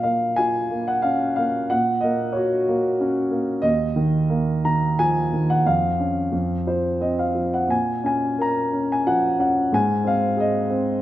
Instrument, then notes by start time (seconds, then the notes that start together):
grand piano
Already playing: A#2 F5
0.03 A#3 F5
0.36 F4 G#5
0.70 A#3
0.88 F#5
1.02 C#4 F5
1.36 A#3 F5
1.70 A#2 F#5
2.01 A#3 D#5
2.33 F#4 C#5
2.68 A#3
3.00 C#4
3.31 A#3
3.62 D#2 D#5
3.96 D#3
4.30 A#3
4.65 D#3 A#5
4.99 F3 G#5
5.33 D#3
5.50 F#5
5.66 F2 F5
6.00 C#4
6.32 F2
6.67 F3 C5
7.01 C4 D#5
7.19 F5
7.35 F3
7.54 F#5
7.68 A#2 G#5
8.04 C#4 G#5
8.38 A#4 A#5
8.73 C#4
8.92 G#5
9.07 F3 F#5
9.39 C#4 F#5
9.72 G#2 G#5
10.04 C4 F5
10.37 G#4 D#5
10.70 C4